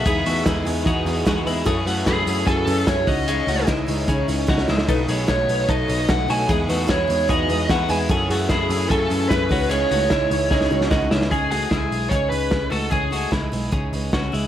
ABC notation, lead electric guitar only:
X:1
M:4/4
L:1/8
Q:1/4=149
K:C#m
V:1 name="Lead electric guitar"
e2 z6 | z2 G2 A2 c d- | d2 z6 | z2 c2 d2 f g |
z2 c2 d2 f g | z2 G2 A2 B2 | c6 z2 | G G3 c B2 A |
G2 z6 |]